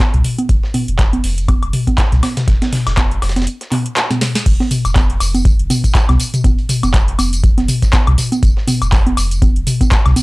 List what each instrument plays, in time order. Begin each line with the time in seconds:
0.00 kick, snare, clap, closed hi-hat, high conga
0.14 sub bass C2, closed hi-hat, mid tom
0.24 closed hi-hat, open hi-hat, mid tom
0.39 closed hi-hat, high conga
0.49 sub bass F1, kick, closed hi-hat
0.63 snare
0.74 closed hi-hat, open hi-hat, mid tom, high conga
0.88 sub bass F1, closed hi-hat
0.99 kick, snare, clap, closed hi-hat
1.13 closed hi-hat, high conga
1.24 sub bass F1, open hi-hat
1.38 closed hi-hat
1.48 kick, closed hi-hat, high conga, high woodblock
1.63 sub bass F1, closed hi-hat, high woodblock
1.73 closed hi-hat, open hi-hat, mid tom
1.87 kick, closed hi-hat, high conga
1.98 kick, snare, clap, closed hi-hat
2.12 sub bass C2, snare, closed hi-hat, mid tom
2.23 snare, closed hi-hat, open hi-hat, high conga, high woodblock
2.37 snare, closed hi-hat, mid tom
2.48 sub bass F1, kick, snare, closed hi-hat
2.62 snare, closed hi-hat, high conga
2.73 snare, closed hi-hat, open hi-hat, mid tom
2.87 sub bass F1, snare, closed hi-hat, high woodblock
2.97 kick, snare, clap, closed hi-hat, high conga, high woodblock
3.11 closed hi-hat
3.22 sub bass F1, snare, closed hi-hat, open hi-hat, high woodblock
3.29 snare, closed hi-hat
3.36 snare, closed hi-hat, high conga
3.42 snare, closed hi-hat
3.47 closed hi-hat
3.61 snare, closed hi-hat
3.72 clap, closed hi-hat, open hi-hat, mid tom, high conga
3.86 closed hi-hat
3.96 snare, clap, closed hi-hat
4.11 snare, closed hi-hat, mid tom, high conga
4.21 snare, closed hi-hat, open hi-hat, mid tom
4.35 snare, closed hi-hat
4.46 sub bass F1, kick, closed hi-hat, tambourine, crash
4.60 snare, high conga
4.71 closed hi-hat, open hi-hat, mid tom, tambourine
4.85 sub bass F1, closed hi-hat, tambourine, high woodblock
4.96 kick, snare, clap, closed hi-hat, tambourine, high conga
5.10 closed hi-hat
5.20 sub bass F1, open hi-hat, tambourine, high woodblock
5.35 closed hi-hat, tambourine, high conga
5.45 kick, closed hi-hat, tambourine
5.59 sub bass F1, closed hi-hat
5.70 closed hi-hat, open hi-hat, mid tom, tambourine, high conga
5.84 kick, closed hi-hat, tambourine
5.95 kick, snare, clap, closed hi-hat, tambourine
6.09 sub bass C2, snare, closed hi-hat, mid tom, high conga, high woodblock
6.20 closed hi-hat, open hi-hat, tambourine
6.34 closed hi-hat, mid tom, tambourine
6.44 sub bass F1, kick, closed hi-hat, tambourine, high conga
6.59 closed hi-hat
6.69 closed hi-hat, open hi-hat, mid tom, tambourine
6.83 sub bass F1, closed hi-hat, tambourine, high conga, high woodblock
6.94 kick, snare, clap, closed hi-hat, tambourine
7.08 closed hi-hat
7.19 sub bass F1, closed hi-hat, open hi-hat, tambourine, high conga, high woodblock
7.33 closed hi-hat, tambourine
7.44 kick, closed hi-hat, tambourine
7.58 sub bass F1, snare, closed hi-hat, high conga
7.68 closed hi-hat, open hi-hat, mid tom, tambourine
7.82 kick, snare, closed hi-hat, tambourine
7.93 kick, snare, clap, closed hi-hat, tambourine, high conga
8.07 sub bass C2, closed hi-hat, mid tom, high woodblock
8.18 snare, closed hi-hat, open hi-hat, mid tom, tambourine
8.32 closed hi-hat, tambourine, high conga
8.43 sub bass F1, kick, closed hi-hat, tambourine
8.57 snare
8.68 closed hi-hat, open hi-hat, mid tom, tambourine, high conga
8.82 sub bass F1, closed hi-hat, tambourine, high woodblock
8.92 kick, snare, clap, closed hi-hat, tambourine
9.06 closed hi-hat, high conga
9.17 sub bass F1, open hi-hat, tambourine, high woodblock
9.31 closed hi-hat, tambourine
9.42 kick, closed hi-hat, tambourine, high conga
9.56 sub bass F1, closed hi-hat
9.67 closed hi-hat, open hi-hat, mid tom, tambourine
9.81 kick, closed hi-hat, tambourine, high conga
9.92 kick, snare, clap, closed hi-hat, tambourine
10.06 sub bass C2, snare, closed hi-hat, mid tom, high woodblock
10.16 closed hi-hat, open hi-hat, tambourine, high conga